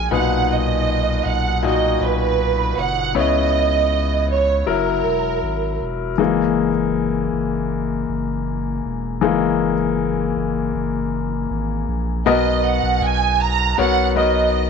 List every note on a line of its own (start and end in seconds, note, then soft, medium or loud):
0.00 0.13 G#3 medium
0.00 0.12 F#4 medium
0.00 0.13 A#4 medium
0.11 1.21 B1 loud
0.11 1.55 A#2 medium
0.11 1.21 B2 medium
0.11 1.56 D#4 medium
0.11 1.56 B4 medium
0.11 0.50 F#5 medium
0.52 1.26 D#5 medium
1.25 1.97 B1 loud
1.25 1.64 F#5 medium
1.63 3.07 A#2 medium
1.63 3.07 D#4 medium
1.63 3.08 F#4 medium
1.63 2.00 D#5 medium
2.01 2.73 B1 medium
2.01 2.78 B4 medium
2.77 3.16 F#1 medium
2.77 3.16 F#5 medium
3.15 4.63 C#2 loud
3.15 4.25 C#3 medium
3.15 4.59 B3 medium
3.15 4.59 E4 medium
3.15 4.60 C#5 medium
3.15 4.26 D#5 medium
4.32 4.68 C#5 medium
4.66 5.02 F#1 loud
4.66 6.11 F#3 medium
4.66 6.11 E4 medium
4.66 6.11 A#4 medium
4.66 5.78 A#4 medium
5.05 5.40 E1 medium
5.43 5.78 G#1 medium
5.81 6.16 E1 medium
6.18 7.29 F#1 loud
6.18 6.69 E3 medium
6.18 6.69 G#3 soft
6.18 6.70 A#3 medium
7.33 8.05 F#1 medium
8.09 8.81 F#1 loud
8.85 9.20 E1 medium
9.21 10.32 F#1 loud
9.21 9.72 E3 medium
9.21 9.73 G#3 soft
9.21 9.73 A#3 medium
10.36 10.72 F#1 medium
10.74 11.46 F#1 loud
11.50 11.86 G#1 loud
11.88 12.24 A#1 medium
12.26 12.79 B1 loud
12.26 13.36 B2 medium
12.26 13.70 B3 medium
12.26 13.71 F#4 medium
12.26 13.71 A#4 medium
12.26 13.71 D#5 medium
12.26 12.63 D#5 medium
12.66 13.03 F#5 medium
12.83 13.01 B1 loud
13.02 13.74 B1 loud
13.02 13.41 G#5 loud
13.42 13.79 A#5 loud
13.78 14.70 B1 loud
13.78 14.14 B3 medium
13.78 14.14 F#4 medium
13.78 14.15 A#4 medium
13.78 14.15 C#5 medium
13.78 14.14 F#5 loud
14.16 14.70 B3 medium
14.16 14.70 F#4 medium
14.16 14.70 A#4 medium
14.16 14.70 D#5 medium